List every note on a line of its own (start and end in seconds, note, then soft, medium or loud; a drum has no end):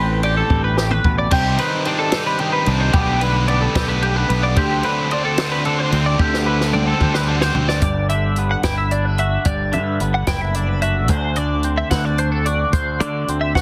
0.00 0.41 A1 loud
0.00 0.76 A2 medium
0.00 1.28 C4 medium
0.00 0.23 B4 medium
0.23 2.99 G4 medium
0.23 0.37 D5 medium
0.23 ride medium
0.37 0.64 A4 medium
0.50 0.98 A1 medium
0.50 0.78 G2 medium
0.50 kick medium
0.50 high tom medium
0.64 0.77 B4 medium
0.77 1.05 A2 medium
0.77 0.91 G4 medium
0.77 snare medium
0.91 1.18 B4 medium
0.91 mid tom medium
1.04 1.29 A1 medium
1.04 1.30 B2 medium
1.04 kick medium
1.18 1.32 D5 medium
1.31 1.56 C2 loud
1.31 1.58 C3 medium
1.31 1.85 C3 medium
1.31 2.93 G3 medium
1.31 1.59 C4 medium
1.31 1.58 D#4 medium
1.31 1.59 G4 medium
1.31 1.58 G4 loud
1.31 1.57 C5 loud
1.31 kick loud
1.31 ride loud
1.31 crash loud
1.58 2.39 D#3 medium
1.58 1.83 C4 medium
1.58 1.84 D#4 medium
1.58 1.86 G4 medium
1.58 1.86 B4 medium
1.58 1.86 C5 medium
1.58 ride medium
1.85 2.13 C4 medium
1.85 2.68 D4 medium
1.85 2.12 D#4 medium
1.85 2.12 G4 medium
1.85 2.10 C5 medium
1.85 1.98 D5 medium
1.85 ride medium
1.99 2.26 A4 medium
2.12 2.96 G3 medium
2.12 2.37 C4 medium
2.12 2.38 D#4 medium
2.12 2.40 G4 medium
2.12 2.40 C5 medium
2.12 snare loud
2.12 ride loud
2.26 2.39 B4 medium
2.38 2.91 D#3 medium
2.38 2.68 C4 medium
2.38 2.67 D#4 medium
2.38 2.52 G4 medium
2.38 2.67 G4 medium
2.38 2.65 C5 loud
2.38 ride medium
2.53 2.80 B4 medium
2.66 2.91 C2 medium
2.66 2.93 C4 medium
2.66 2.97 D4 medium
2.66 2.93 D#4 medium
2.66 2.95 G4 medium
2.66 2.92 C5 medium
2.66 ride medium
2.80 2.94 C5 medium
2.93 3.66 B1 loud
2.93 3.48 B2 medium
2.93 3.22 B2 medium
2.93 3.21 D3 medium
2.93 4.56 G3 loud
2.93 3.75 A3 medium
2.93 3.22 B3 loud
2.93 3.48 B3 medium
2.93 3.22 D4 medium
2.93 3.21 G4 loud
2.93 3.22 G4 medium
2.93 3.20 B4 loud
2.93 kick loud
2.93 ride loud
3.21 4.01 D3 medium
3.21 3.47 B3 medium
3.21 3.49 D4 medium
3.21 3.49 G4 medium
3.21 3.48 B4 medium
3.21 3.49 B4 medium
3.21 ride medium
3.48 3.77 B3 medium
3.48 4.28 B3 medium
3.48 3.77 D4 medium
3.48 3.76 G4 medium
3.48 3.74 B4 medium
3.48 3.62 D5 medium
3.48 ride medium
3.61 3.89 A4 medium
3.75 4.23 B1 medium
3.75 3.88 G3 medium
3.75 4.01 B3 medium
3.75 4.03 D4 medium
3.75 4.04 G4 medium
3.75 4.04 B4 medium
3.75 kick medium
3.75 snare loud
3.75 ride medium
3.88 4.57 A3 medium
3.88 4.02 B4 medium
4.02 4.56 D3 medium
4.02 4.30 B3 medium
4.02 4.30 D4 medium
4.02 4.16 G4 medium
4.02 4.29 G4 medium
4.02 4.27 B4 medium
4.02 ride medium
4.16 4.43 B4 medium
4.29 4.54 B1 medium
4.29 4.57 B3 medium
4.29 4.56 B3 medium
4.29 4.57 D4 medium
4.29 4.58 G4 medium
4.29 4.55 B4 medium
4.29 ride medium
4.43 4.57 D5 medium
4.56 6.18 D2 medium
4.56 4.81 D2 loud
4.56 5.16 D3 medium
4.56 4.84 D3 medium
4.56 5.11 F#3 medium
4.56 4.85 A3 medium
4.56 5.12 C4 medium
4.56 4.85 D4 loud
4.56 4.83 F#4 loud
4.56 4.84 G4 loud
4.56 4.83 C5 loud
4.56 kick loud
4.56 ride loud
4.83 5.65 D3 medium
4.83 5.10 A3 medium
4.83 5.11 D4 medium
4.83 5.11 F#4 medium
4.83 5.12 B4 medium
4.83 5.13 C5 medium
4.83 ride medium
5.10 5.39 A3 medium
5.10 5.93 C4 medium
5.10 5.39 D4 medium
5.10 5.38 F#4 medium
5.10 5.36 C5 medium
5.10 5.24 D5 medium
5.10 ride medium
5.25 5.51 A4 medium
5.37 5.63 A3 medium
5.37 5.65 D4 medium
5.37 5.65 F#4 medium
5.37 5.66 C5 medium
5.37 snare loud
5.37 ride medium
5.52 5.65 B4 medium
5.64 6.46 D3 medium
5.64 5.93 A3 medium
5.64 5.93 D4 medium
5.64 5.91 F#4 medium
5.64 5.79 A4 medium
5.64 5.90 C5 medium
5.64 ride medium
5.79 6.06 C5 medium
5.92 6.16 D2 medium
5.92 6.19 A3 medium
5.92 6.17 C4 medium
5.92 6.19 D4 medium
5.92 6.20 F#4 medium
5.92 6.20 C5 medium
5.92 ride medium
6.06 6.20 D5 medium
6.19 6.92 D2 loud
6.19 7.82 D2 medium
6.19 6.74 D3 medium
6.19 6.74 F#3 loud
6.19 6.48 A3 loud
6.19 6.47 D4 loud
6.19 6.46 F#4 loud
6.19 6.47 G4 medium
6.19 6.45 C5 loud
6.19 kick loud
6.19 high tom medium
6.34 snare medium
6.46 7.27 D3 medium
6.46 6.72 A3 medium
6.46 6.72 D4 medium
6.46 6.73 F#4 medium
6.46 6.73 B4 medium
6.46 6.74 C5 medium
6.61 snare medium
6.73 7.01 A3 medium
6.73 7.54 C4 medium
6.73 7.01 D4 medium
6.73 7.00 F#4 medium
6.73 6.99 C5 medium
6.73 6.87 D5 medium
6.73 mid tom medium
6.87 7.14 A4 medium
7.00 7.49 D2 medium
7.00 8.38 G3 medium
7.00 7.26 A3 medium
7.00 7.28 D4 medium
7.00 7.29 F#4 medium
7.00 7.29 C5 medium
7.00 kick medium
7.00 mid tom medium
7.14 7.28 B4 medium
7.14 snare medium
7.28 8.09 D3 medium
7.28 7.56 A3 medium
7.28 7.55 D4 medium
7.28 7.54 F#4 medium
7.28 7.42 A4 medium
7.28 7.53 C5 medium
7.41 7.68 C5 medium
7.41 snare medium
7.54 7.80 D2 loud
7.54 7.82 A3 medium
7.54 7.79 C4 medium
7.54 7.81 D4 medium
7.54 7.81 F#4 medium
7.54 7.81 C5 medium
7.54 floor tom loud
7.69 7.81 D5 medium
7.69 snare medium
7.82 8.54 G1 loud
7.82 9.43 G2 medium
7.82 8.09 D5 medium
7.82 kick loud
7.82 closed hi-hat medium
8.09 9.71 D3 medium
8.09 8.37 E5 medium
8.09 closed hi-hat medium
8.36 9.43 B3 medium
8.36 closed hi-hat medium
8.51 8.63 F#5 medium
8.63 9.36 G1 medium
8.63 9.19 E4 medium
8.63 8.77 G5 medium
8.63 kick medium
8.63 snare loud
8.63 closed hi-hat medium
8.78 8.91 E5 medium
8.91 10.31 D4 medium
8.91 9.05 D5 medium
8.91 closed hi-hat medium
9.05 9.19 B4 medium
9.18 9.49 F#4 medium
9.18 9.46 E5 medium
9.18 closed hi-hat medium
9.45 9.75 G1 loud
9.45 11.06 G2 medium
9.45 9.73 D5 medium
9.45 kick loud
9.45 closed hi-hat loud
9.72 9.98 G2 medium
9.72 11.37 D3 medium
9.72 10.01 E5 medium
9.72 closed hi-hat medium
10.00 10.25 G1 medium
10.00 11.07 B3 medium
10.00 closed hi-hat medium
10.14 10.27 F#5 medium
10.27 11.09 F#1 medium
10.27 10.82 E4 medium
10.27 10.41 G5 medium
10.27 kick medium
10.27 snare loud
10.27 closed hi-hat loud
10.41 10.55 E5 medium
10.54 11.67 D4 medium
10.54 10.69 D5 medium
10.54 closed hi-hat medium
10.69 10.82 B4 medium
10.82 11.67 F#4 medium
10.82 11.09 E5 medium
10.82 closed hi-hat medium
11.08 11.82 D2 loud
11.08 12.73 D2 medium
11.08 11.36 C5 medium
11.08 kick loud
11.08 closed hi-hat loud
11.36 12.99 D3 medium
11.36 11.64 D5 medium
11.36 closed hi-hat medium
11.63 12.70 C4 medium
11.63 closed hi-hat medium
11.78 11.90 E5 medium
11.91 12.64 D2 medium
11.91 12.05 E4 medium
11.91 12.05 F#5 medium
11.91 kick medium
11.91 snare loud
11.91 closed hi-hat medium
12.05 12.46 F#4 medium
12.05 12.19 D5 medium
12.18 13.32 D4 medium
12.18 12.31 C5 medium
12.18 closed hi-hat medium
12.32 12.46 A4 medium
12.46 13.32 F#4 medium
12.46 12.73 D5 medium
12.46 closed hi-hat medium
12.73 13.00 D2 loud
12.73 13.62 D2 medium
12.73 13.01 C5 medium
12.73 kick loud
12.73 closed hi-hat medium
13.00 13.25 D3 medium
13.00 13.62 D3 medium
13.00 13.28 D5 medium
13.00 closed hi-hat medium
13.28 13.52 D2 medium
13.28 13.62 C4 medium
13.28 closed hi-hat medium
13.41 13.55 E5 medium
13.55 13.62 C2 medium
13.55 13.62 F#4 medium
13.55 13.62 F#5 medium
13.55 kick medium
13.55 snare medium